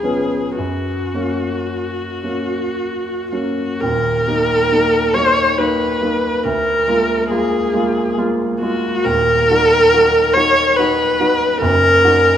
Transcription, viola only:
Already playing: G#4
0.59 F#4
3.31 F#4
3.81 A#4
5.14 C#5
5.58 B4
6.44 A#4
7.30 G#4
8.61 F#4
9.04 A#4
10.34 C#5
10.77 B4
11.61 A#4

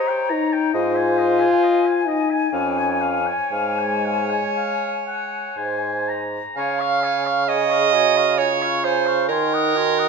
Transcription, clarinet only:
Already playing: C#5
0.74 C5
2.52 C#5
5.57 C5
6.57 F5
7.48 D#5
8.39 C#5
8.84 C5
9.29 A#4

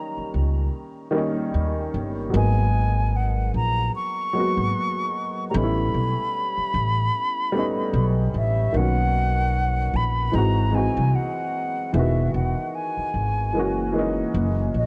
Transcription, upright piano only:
Already playing: D#3 G3 A#3 C#4 D#4
1.11 D#3 G3 A#3
1.16 C#4 D#4
2.30 F#3 G#3 A#3
2.35 B3 D#4
4.33 F#3 G#3 A#3
4.38 B3 F#4
5.51 G3 A3 B3
5.55 C#4 D#4
5.63 E4
7.52 G3 A3 B3
7.57 C#4 D#4
8.73 D#3 A#3 B3
8.77 C#4 F#4
10.32 E3 G#3 C4
10.36 D#4 F#4
10.71 E3 G#3 C4
10.75 D#4 F#4
11.93 E3 G#3 B3
11.97 D#3 F#4
13.53 E3 G#3 A#3
13.58 C#4 F#4
13.92 E3 G#3 A#3
13.97 C#4 D#4

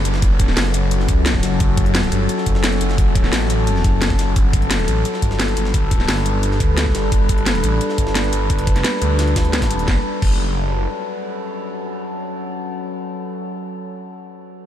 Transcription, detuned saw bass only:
0.05 F#1
0.57 F#1
1.09 C#2
1.43 F#1
1.60 F#1
1.78 F#1
2.12 G1
2.46 F#1
2.81 F#1
3.33 A1
3.84 F#1
4.19 F#1
4.36 G1
4.53 G1
4.88 A1
5.22 G1
5.57 G1
6.09 G1
6.60 D2
6.95 G1
7.12 G1
7.29 G1
7.64 A1
7.98 G1
8.33 G1
9.02 D2
9.88 F#1
10.22 F#1

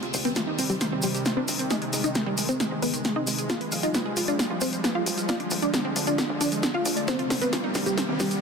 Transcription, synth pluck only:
Already playing: C4 C5
0.25 B3 B4
0.70 G3 G4
1.03 G3 G4
1.37 C4 C5
1.70 D#4 D#5
2.04 D#4 D#5
2.49 C4 C5
2.82 B3 B4
3.16 D#4 D#5
3.50 F4 F5
3.83 D#4 D#5
4.28 D4 D5
4.62 C4 C5
4.95 F4 F5
5.29 F4 F5
5.62 D4 D5
6.07 D4 D5
6.41 D4 D5
6.74 F4 F5
7.08 C4 C5
7.42 B3 B4
7.86 G3 G4
8.20 G3 G4

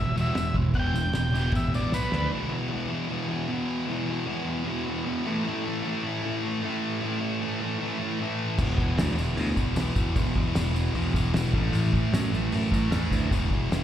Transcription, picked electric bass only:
Already playing: E1
0.16 E1
0.34 E1
0.54 E1
0.74 E1
0.94 E1
1.13 E1
1.33 E1
1.53 A1
1.92 B1
2.13 D2
8.58 E1
8.98 D2
9.18 E1
9.37 D2
9.56 E1
9.76 B1
9.96 E2
10.16 E1
10.36 E1
10.55 E1
10.95 B1
11.14 E1
11.35 E1
11.53 A1
11.72 A1
12.13 F#2
12.31 A1
12.53 F#2
12.72 A1
12.91 E2
13.11 D2
13.31 E1
13.51 E1
13.70 E1

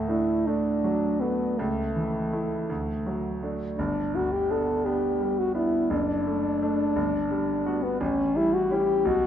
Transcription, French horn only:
Already playing: A3
0.09 E4
0.47 D4
1.21 B3
1.58 A3
3.78 D4
4.15 F#4
4.32 G4
4.51 A4
4.86 G4
5.39 F#4
5.55 E4
5.91 D4
7.83 B3
8.01 C#4
8.36 E4
8.54 F#4
8.72 G4
9.07 F#4

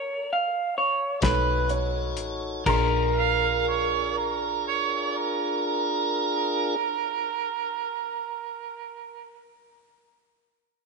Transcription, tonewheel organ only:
1.20 D#4 F#4 A4 C#5
2.65 D4 F4 G#4 A#4

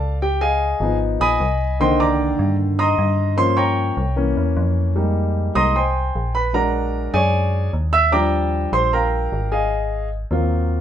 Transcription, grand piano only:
Already playing: A4 D5 F5 A5
0.22 G4 G5
0.41 G#4 D#5 F5 G#5
0.81 F3 B3 D#4
1.21 D#5 G#5 B5 D#6
1.80 D3 D#3 A#3 C5 D#5 G5 C6
2.00 D5 G5 A#5 D6
2.79 D#5 A#5 C6 D#6
3.36 F3 A#3 C#4 C5 C6
3.57 C#5 G5 A#5 C#6
4.16 E3 A#3 C#4
4.96 G3 G#3 A#3 D#4
5.55 G3 G#3 A#3 D#4 D#5 A#5 C6 D#6
5.76 C5 G5 G#5 C6
6.35 B4 B5
6.53 F#3 G#3 D4 A#4 D5 F#5 A#5
7.14 G#4 C#5 D5 G#5
7.93 E5 E6
8.12 F3 G3 D4 D5 G5 A#5 D6
8.73 C5 C6
8.93 A#4 F5 G5 A#5
9.52 G#4 D#5 F5 G#5
10.31 F#3 A#3 C4 F4

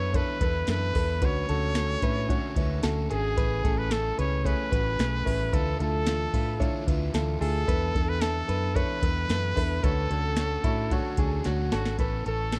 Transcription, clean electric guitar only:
Already playing: B4
0.14 C#5
0.42 B4
0.96 B4
1.23 B4
1.49 A4
2.03 B4
2.30 C#5
2.57 B4
2.83 A4
3.11 G#4
3.38 B4
3.65 A4
3.92 A4
4.19 B4
4.45 C#5
4.72 B4
5.26 B4
5.53 B4
5.79 A4
6.34 B4
6.60 C#5
6.88 B4
7.14 A4
7.41 G#4
7.68 B4
7.95 A4
8.22 A4
8.49 B4
8.76 C#5
9.03 B4
9.57 B4
9.84 B4
10.10 A4
10.64 E4
10.91 F#4
11.18 G#4
11.46 F#4
11.72 A4
12.00 B4
12.26 A4
12.53 A4

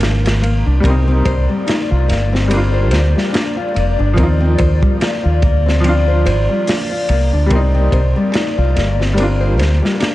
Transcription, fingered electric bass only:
Already playing: G#1
0.67 C2
0.84 C2
1.26 C2
1.92 C2
2.09 G1
2.93 D2
3.76 F1
4.00 G1
4.18 D#2
4.60 D#2
5.25 D#2
5.43 D2
6.26 G#1
7.09 C2
7.34 D2
7.51 C2
7.93 C2
8.58 C2
8.76 G1
9.60 D2

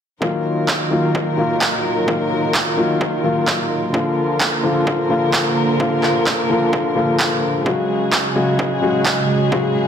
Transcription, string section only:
0.22 D#3 F#3 F4 A#4
3.94 D3 A#3 A#4
7.66 C#3 G#3 F#4 G#4

